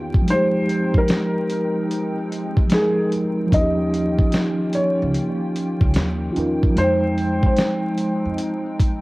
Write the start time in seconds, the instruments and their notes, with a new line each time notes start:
Already playing: upright bass E2, analog synth pad D#3 A#3 C#4 F4 G5, tine electric piano C#4 D#4 F4 G4
0.14 kick
0.22 tine electric piano F3
0.26 analog synth pad F3 G#3 C4 D#4, tine electric piano G3, closed hi-hat
0.30 tine electric piano G#3 D#4, felt piano C5
0.35 tine electric piano G4
0.69 closed hi-hat
0.94 felt piano A#4, kick
1.08 snare, closed hi-hat
1.50 closed hi-hat
1.91 closed hi-hat
2.32 closed hi-hat
2.57 kick
2.67 tine electric piano F3 G#3, closed hi-hat
2.72 tine electric piano D#4 G#4, felt piano G#4, snare
2.81 tine electric piano A#4
3.12 closed hi-hat
3.47 tine electric piano F3
3.52 upright bass D#2, analog synth pad D#3 A#3 C#4 F4 G5, tine electric piano C#4, felt piano D#5, kick, closed hi-hat
3.56 tine electric piano D#4
3.61 tine electric piano G4
3.94 closed hi-hat
4.19 kick
4.32 snare, closed hi-hat
4.73 felt piano C#5, closed hi-hat
5.02 upright bass C#2
5.14 closed hi-hat
5.56 closed hi-hat
5.81 upright bass C#2, kick
5.94 upright bass D#2, snare, closed hi-hat
6.32 tine electric piano C#4 F4, closed hi-hat
6.36 upright bass E2, tine electric piano D#4 A#4
6.63 kick
6.70 tine electric piano F3
6.75 upright bass F2, analog synth pad F3 G#3 C4 D#4, tine electric piano G#3, felt piano C5, closed hi-hat
6.80 tine electric piano D#4
6.84 tine electric piano G5
7.18 closed hi-hat
7.43 felt piano C5, kick
7.56 snare, closed hi-hat
7.98 closed hi-hat
8.25 upright bass F2
8.38 closed hi-hat
8.80 kick, closed hi-hat